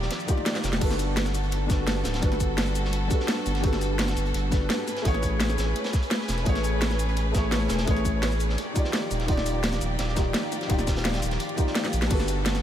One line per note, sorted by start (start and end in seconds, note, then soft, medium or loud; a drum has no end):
0.00 0.26 D#3 medium
0.00 0.78 F3 medium
0.00 0.27 D#4 medium
0.00 0.78 D#4 medium
0.00 0.29 F4 medium
0.00 0.30 G4 medium
0.00 0.78 G4 medium
0.00 0.32 D5 loud
0.00 0.78 D5 medium
0.00 snare medium
0.11 snare loud
0.11 closed hi-hat loud
0.11 closed hi-hat medium
0.20 shaker soft
0.26 0.78 D#3 medium
0.26 0.79 D#4 medium
0.26 0.79 F4 medium
0.26 kick loud
0.26 closed hi-hat medium
0.26 shaker medium
0.30 0.80 G4 medium
0.30 0.81 D5 loud
0.37 snare soft
0.46 snare loud
0.46 closed hi-hat medium
0.46 closed hi-hat loud
0.55 snare soft
0.55 snare medium
0.55 shaker soft
0.63 0.80 F1 medium
0.63 snare medium
0.63 closed hi-hat medium
0.63 shaker medium
0.72 snare soft
0.72 snare loud
0.72 closed hi-hat soft
0.78 1.68 G1 loud
0.78 1.65 G3 loud
0.78 4.83 G3 medium
0.78 4.83 B3 medium
0.78 1.66 D4 medium
0.78 1.68 F#4 medium
0.78 4.83 F#4 medium
0.78 4.83 A4 medium
0.78 kick loud
0.78 closed hi-hat medium
0.78 closed hi-hat loud
0.78 crash loud
0.83 1.68 A4 medium
0.83 1.69 B4 loud
0.90 snare soft
0.90 snare medium
0.99 closed hi-hat medium
0.99 shaker medium
1.16 snare loud
1.16 closed hi-hat loud
1.16 closed hi-hat medium
1.26 snare soft
1.26 snare medium
1.26 shaker soft
1.34 closed hi-hat medium
1.34 shaker medium
1.43 closed hi-hat soft
1.51 closed hi-hat medium
1.51 closed hi-hat loud
1.67 2.04 G1 medium
1.67 2.18 G3 medium
1.67 2.19 D4 medium
1.67 2.20 F#4 medium
1.67 kick loud
1.67 snare medium
1.67 closed hi-hat medium
1.67 shaker medium
1.71 2.21 A4 medium
1.71 2.22 B4 loud
1.87 snare loud
1.87 closed hi-hat loud
2.04 2.21 D1 medium
2.04 snare loud
2.04 snare soft
2.04 closed hi-hat medium
2.04 shaker medium
2.14 snare loud
2.14 closed hi-hat medium
2.14 closed hi-hat soft
2.19 3.09 G1 loud
2.19 3.06 G3 medium
2.19 3.08 D4 medium
2.19 3.09 F#4 medium
2.19 kick loud
2.19 closed hi-hat medium
2.24 3.09 A4 medium
2.24 3.10 B4 loud
2.32 snare medium
2.40 kick medium
2.40 closed hi-hat medium
2.40 shaker medium
2.58 snare loud
2.58 closed hi-hat loud
2.58 closed hi-hat medium
2.67 shaker soft
2.75 closed hi-hat medium
2.75 shaker medium
2.85 snare medium
2.93 closed hi-hat medium
3.08 3.59 G3 medium
3.08 3.60 D4 medium
3.08 3.62 F#4 medium
3.08 kick loud
3.08 closed hi-hat medium
3.08 shaker medium
3.12 3.62 A4 medium
3.12 3.63 B4 medium
3.20 snare soft
3.28 snare loud
3.28 closed hi-hat loud
3.28 closed hi-hat medium
3.46 4.15 G1 loud
3.46 closed hi-hat medium
3.46 shaker medium
3.55 snare soft
3.55 closed hi-hat soft
3.60 4.48 G3 loud
3.60 4.49 D4 medium
3.60 4.50 F#4 medium
3.60 kick loud
3.60 closed hi-hat medium
3.65 4.51 A4 medium
3.65 4.51 B4 loud
3.73 snare soft
3.73 snare medium
3.81 closed hi-hat medium
3.81 shaker medium
3.99 snare loud
3.99 closed hi-hat medium
4.08 snare medium
4.08 shaker soft
4.10 snare medium
4.17 4.33 G1 medium
4.17 closed hi-hat medium
4.17 shaker medium
4.26 closed hi-hat soft
4.34 4.68 G1 medium
4.34 closed hi-hat medium
4.50 4.86 G3 medium
4.50 4.86 D4 medium
4.50 4.86 F#4 medium
4.50 4.87 A4 medium
4.50 4.87 B4 loud
4.50 kick loud
4.50 snare medium
4.50 closed hi-hat medium
4.50 shaker medium
4.70 snare loud
4.70 closed hi-hat medium
4.70 closed hi-hat loud
4.87 8.54 A3 medium
4.87 8.54 C#4 medium
4.87 8.54 G#4 medium
4.87 8.54 B4 medium
4.87 snare soft
4.87 closed hi-hat medium
4.87 shaker medium
4.96 snare medium
4.96 closed hi-hat soft
5.02 5.57 A1 loud
5.02 5.90 A3 loud
5.02 5.90 E4 medium
5.02 5.91 G#4 medium
5.02 kick loud
5.02 closed hi-hat medium
5.06 5.92 B4 medium
5.06 5.93 C#5 loud
5.14 snare medium
5.23 kick medium
5.23 closed hi-hat medium
5.23 shaker medium
5.40 snare loud
5.40 closed hi-hat medium
5.50 snare medium
5.50 shaker soft
5.58 5.74 A1 medium
5.58 snare loud
5.58 closed hi-hat medium
5.58 shaker medium
5.76 closed hi-hat medium
5.84 snare loud
5.84 closed hi-hat medium
5.93 kick loud
5.93 snare medium
5.93 closed hi-hat medium
5.93 shaker medium
6.02 closed hi-hat medium
6.10 snare loud
6.10 closed hi-hat medium
6.21 snare medium
6.28 6.44 E1 medium
6.28 snare loud
6.28 closed hi-hat medium
6.28 shaker medium
6.37 snare soft
6.37 closed hi-hat soft
6.43 7.33 A1 loud
6.43 7.30 A3 loud
6.43 7.31 E4 medium
6.43 7.32 G#4 medium
6.43 kick loud
6.43 closed hi-hat medium
6.48 7.33 B4 medium
6.48 7.34 C#5 loud
6.55 snare soft
6.55 snare medium
6.64 closed hi-hat medium
6.64 shaker medium
6.81 snare loud
6.81 closed hi-hat medium
6.91 snare medium
6.91 shaker soft
6.99 closed hi-hat medium
6.99 shaker medium
7.09 closed hi-hat soft
7.16 closed hi-hat medium
7.31 7.68 A1 medium
7.31 7.83 A3 medium
7.31 7.84 E4 medium
7.31 7.85 G#4 medium
7.31 kick loud
7.31 snare medium
7.31 closed hi-hat medium
7.31 shaker medium
7.36 7.86 B4 medium
7.36 7.87 C#5 loud
7.51 snare loud
7.51 closed hi-hat medium
7.68 7.86 E1 medium
7.68 snare loud
7.68 snare soft
7.68 closed hi-hat medium
7.68 shaker medium
7.78 snare loud
7.78 closed hi-hat medium
7.78 closed hi-hat soft
7.84 8.57 A1 loud
7.84 8.55 A3 loud
7.84 8.56 E4 medium
7.84 8.57 G#4 medium
7.84 kick loud
7.84 closed hi-hat medium
7.89 8.58 B4 medium
7.89 8.59 C#5 loud
7.97 snare medium
8.05 kick medium
8.05 closed hi-hat medium
8.05 shaker medium
8.22 snare loud
8.22 closed hi-hat medium
8.32 shaker soft
8.40 closed hi-hat medium
8.40 shaker medium
8.49 snare medium
8.58 12.07 F3 medium
8.58 9.98 D#4 medium
8.58 12.07 G4 medium
8.58 12.07 D5 medium
8.58 closed hi-hat medium
8.72 9.24 D#3 medium
8.72 9.25 D#4 medium
8.72 9.26 F4 medium
8.72 kick loud
8.72 closed hi-hat medium
8.72 shaker medium
8.77 9.27 G4 medium
8.77 9.28 D5 loud
8.84 snare medium
8.93 snare loud
8.93 closed hi-hat medium
9.11 9.80 D#1 loud
9.11 closed hi-hat medium
9.11 shaker medium
9.20 snare soft
9.20 closed hi-hat soft
9.25 10.12 D#3 loud
9.25 10.14 D#4 medium
9.25 10.15 F4 medium
9.25 kick loud
9.25 closed hi-hat loud
9.25 closed hi-hat medium
9.30 10.15 G4 medium
9.30 10.16 D5 loud
9.37 snare medium
9.46 closed hi-hat medium
9.46 shaker medium
9.63 snare loud
9.63 closed hi-hat medium
9.63 closed hi-hat loud
9.73 snare medium
9.73 shaker soft
9.81 9.97 D#1 medium
9.81 closed hi-hat medium
9.81 shaker medium
9.99 10.33 D#1 medium
9.99 12.09 F4 medium
9.99 snare loud
9.99 closed hi-hat loud
9.99 closed hi-hat medium
10.08 snare soft
10.13 10.65 D#3 medium
10.13 10.67 D#4 medium
10.13 10.67 F4 medium
10.13 kick loud
10.13 snare medium
10.13 closed hi-hat medium
10.13 shaker medium
10.18 10.68 G4 medium
10.18 10.69 D5 loud
10.34 snare loud
10.34 closed hi-hat loud
10.34 closed hi-hat medium
10.52 snare soft
10.52 closed hi-hat medium
10.52 shaker medium
10.61 snare medium
10.61 closed hi-hat soft
10.67 11.21 D#1 loud
10.67 11.53 D#3 loud
10.67 11.55 D#4 medium
10.67 11.56 F4 medium
10.67 kick loud
10.67 closed hi-hat loud
10.67 closed hi-hat medium
10.71 11.57 G4 medium
10.71 11.57 D5 loud
10.79 snare medium
10.79 shaker soft
10.87 kick medium
10.87 snare loud
10.87 closed hi-hat medium
10.87 shaker medium
10.96 snare loud
10.96 closed hi-hat medium
11.05 snare loud
11.05 closed hi-hat loud
11.05 closed hi-hat medium
11.14 snare loud
11.14 snare medium
11.14 closed hi-hat medium
11.14 shaker soft
11.22 11.39 D#1 medium
11.22 closed hi-hat medium
11.22 shaker medium
11.31 snare medium
11.31 closed hi-hat soft
11.40 closed hi-hat medium
11.40 closed hi-hat loud
11.49 closed hi-hat soft
11.55 12.07 D#3 medium
11.55 12.08 D#4 medium
11.55 12.09 F4 medium
11.55 kick loud
11.55 closed hi-hat medium
11.55 shaker medium
11.59 12.09 G4 medium
11.59 12.10 D5 loud
11.67 snare soft
11.75 snare loud
11.75 closed hi-hat medium
11.75 closed hi-hat loud
11.85 snare medium
11.85 closed hi-hat soft
11.85 shaker soft
11.93 12.09 A#1 loud
11.93 closed hi-hat medium
11.93 shaker medium
12.02 snare soft
12.02 snare loud
12.02 closed hi-hat soft
12.08 12.62 G1 loud
12.08 12.62 G3 medium
12.08 12.62 B3 medium
12.08 12.62 D4 medium
12.08 12.62 F#4 medium
12.08 12.62 A4 medium
12.08 kick loud
12.08 closed hi-hat medium
12.08 crash medium
12.08 ride bell medium
12.12 12.62 A4 medium
12.12 12.62 B4 loud
12.19 snare soft
12.19 snare medium
12.28 closed hi-hat medium
12.28 ride bell soft
12.28 shaker medium
12.45 snare loud
12.45 closed hi-hat medium
12.45 closed hi-hat loud
12.45 ride bell medium
12.54 snare soft
12.54 snare medium
12.54 shaker soft